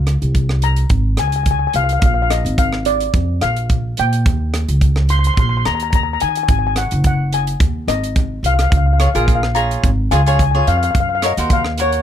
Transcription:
Already playing: upright bass C#2, steel pan F5
0.07 cross-stick, closed hi-hat
0.22 upright bass C2, closed hi-hat
0.35 kick, closed hi-hat
0.49 cross-stick
0.62 steel pan A#5, closed hi-hat
0.76 closed hi-hat
0.90 upright bass G#1, kick, closed hi-hat
1.17 upright bass C#2, steel pan G#5, cross-stick, closed hi-hat
1.28 steel pan G#5
1.32 steel pan G#5, closed hi-hat
1.43 steel pan G#5, kick, closed hi-hat
1.51 steel pan G#5
1.59 steel pan G#5
1.67 steel pan G#5
1.73 upright bass C2, steel pan F5, closed hi-hat
1.84 steel pan F5
1.89 steel pan F5, closed hi-hat
2.00 upright bass A#1, steel pan F5, kick, closed hi-hat
2.06 steel pan F5
2.14 steel pan F5
2.22 steel pan F5
2.30 steel pan D#5, cross-stick, closed hi-hat
2.45 upright bass G#1, closed hi-hat
2.58 steel pan F5, kick, closed hi-hat
2.73 cross-stick
2.85 steel pan D5, closed hi-hat
3.01 closed hi-hat
3.14 upright bass F2, kick, closed hi-hat
3.41 upright bass A#1, steel pan F5, cross-stick, closed hi-hat
3.56 closed hi-hat
3.70 kick, closed hi-hat
3.97 upright bass A#2, steel pan G5, closed hi-hat
4.13 closed hi-hat
4.26 upright bass D#2, kick, closed hi-hat
4.54 cross-stick, closed hi-hat
4.69 upright bass C#2, closed hi-hat
4.81 kick, closed hi-hat
4.96 cross-stick
5.09 steel pan C6, closed hi-hat
5.19 steel pan C6
5.24 steel pan C6, closed hi-hat
5.34 upright bass A#1, steel pan C6, kick, closed hi-hat
5.40 steel pan C6
5.49 steel pan C6
5.57 steel pan C6
5.65 upright bass D#2, steel pan A#5, cross-stick, closed hi-hat
5.75 steel pan A#5
5.80 steel pan A#5, closed hi-hat
5.91 steel pan A#5, kick, closed hi-hat
5.96 steel pan A#5
6.03 steel pan A#5
6.13 steel pan A#5
6.20 upright bass D#3, steel pan G#5, closed hi-hat
6.29 steel pan G#5
6.35 steel pan G#5, closed hi-hat
6.43 steel pan G#5
6.48 upright bass G#1, steel pan G#5, kick, closed hi-hat
6.59 steel pan G#5
6.67 steel pan G#5
6.76 steel pan F#5, cross-stick, closed hi-hat
6.91 upright bass F#1, closed hi-hat
7.04 steel pan F#5, kick, closed hi-hat
7.32 steel pan G#5, closed hi-hat
7.47 closed hi-hat
7.60 upright bass D#2, kick, closed hi-hat
7.88 upright bass G#1, steel pan D#5, cross-stick, closed hi-hat
8.04 closed hi-hat
8.16 kick, closed hi-hat
8.43 upright bass C2, steel pan F5, closed hi-hat
8.54 steel pan F5
8.59 steel pan F5, cross-stick, closed hi-hat
8.71 upright bass C#2, steel pan F5, kick, closed hi-hat
8.77 steel pan F5
8.86 steel pan F5
8.93 steel pan F5
8.99 cavaquinho F4 G#4 C#5, steel pan F5, cross-stick, closed hi-hat
9.07 steel pan F5
9.14 upright bass A#1, cavaquinho F4 G#4 A#4, steel pan F5, closed hi-hat
9.20 steel pan F5
9.26 steel pan F5, kick, closed hi-hat
9.35 steel pan F5
9.42 steel pan F5, cross-stick
9.55 cavaquinho F4 G#4 C#5, steel pan A#5, closed hi-hat
9.71 closed hi-hat
9.84 upright bass G#1, kick, closed hi-hat
10.11 upright bass C#2, cavaquinho F4 G#4 C#5, steel pan G#5, cross-stick, closed hi-hat
10.26 cavaquinho F4 G#4 C#5, steel pan G#5, closed hi-hat
10.35 steel pan G#5
10.39 steel pan G#5, kick, closed hi-hat
10.51 cavaquinho G#4 C#5, steel pan G#5
10.55 cavaquinho F4, steel pan G#5
10.67 upright bass F2, steel pan F5, closed hi-hat
10.77 steel pan F5
10.83 steel pan F5, closed hi-hat
10.91 steel pan F5
10.95 upright bass F#2, kick, closed hi-hat
11.00 steel pan F5
11.09 steel pan F5
11.15 steel pan F5
11.22 cavaquinho F#4 A#4 C#5, steel pan D#5, cross-stick, closed hi-hat
11.37 upright bass D#2, cavaquinho F#4 A#4 C5, closed hi-hat
11.50 steel pan F5, kick, closed hi-hat
11.65 cross-stick
11.78 cavaquinho F#4 A#4 C#5, closed hi-hat
11.82 steel pan C#5
11.92 closed hi-hat

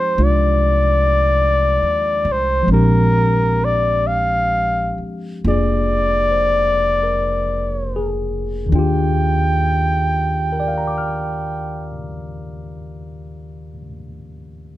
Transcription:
Already playing: tine electric piano F3 G#3 C4 D#4 G4, flugelhorn C5
0.18 upright bass C2, tine electric piano G#3 D4 F4
0.24 flugelhorn D5
1.82 upright bass D#2
2.25 upright bass C2
2.32 flugelhorn C5
2.63 tine electric piano F3 G#3
2.68 upright bass A#1, tine electric piano C4 D4
2.73 tine electric piano G4, flugelhorn A#4
3.65 flugelhorn D5
4.07 flugelhorn F5
4.98 muted upright bass stroke
5.44 upright bass F1, tine electric piano A#3 D4 F4 G#4, flugelhorn D5
6.31 tine electric piano C5
7.03 tine electric piano A#4
7.96 tine electric piano G#4
8.66 tine electric piano D#2 D#3
8.72 upright bass D#2, tine electric piano D4 F4, flugelhorn G5
8.79 tine electric piano G4
10.53 tine electric piano A#4
10.60 tine electric piano D5
10.68 tine electric piano F5
10.78 tine electric piano A#5
10.87 tine electric piano D6
10.98 tine electric piano F6

